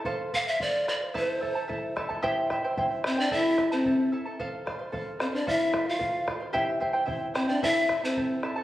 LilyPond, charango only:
\new Staff \with { instrumentName = "Charango" } { \time 2/4 \key a \minor \tempo 4 = 111 <a' c'' f''>8 <a' c'' f''>16 <c'' f''>16 <a' c'' f''>8 <a' c'' f''>16 <c'' f''>16 | <e' a' c'' e'' a''>8 <e' a' e'' a''>16 <e' a' a''>16 <e' a' e'' a''>8 <e' a' e'' a''>16 <e' a' a''>16 | <e' g' c'' e'' g''>8 <e' c'' e'' g''>16 <e' c'' g''>16 <e' c'' e'' g''>8 <e' c'' e'' g''>16 <e' c'' g''>16 | <e' a' c'' e'' a''>8 <e' a' e'' a''>16 <e' a' a''>16 <e' a' e'' a''>8 <e' a' e'' a''>16 <e' a' a''>16 |
<a' c'' f''>8 <a' c'' f''>16 <c'' f''>16 <a' c'' f''>8 <a' c'' f''>16 <c'' f''>16 | <a' c'' f''>8 <a' c'' f''>16 <c'' f''>16 <a' c'' f''>8 <a' c'' f''>16 <c'' f''>16 | <e' g' c'' e'' g''>8 <e' c'' e'' g''>16 <e' c'' g''>16 <e' c'' e'' g''>8 <e' c'' e'' g''>16 <e' c'' g''>16 | <e' a' c'' e'' a''>8 <e' a' e'' a''>16 <e' a' a''>16 <e' a' e'' a''>8 <e' a' e'' a''>16 <e' a' a''>16 | }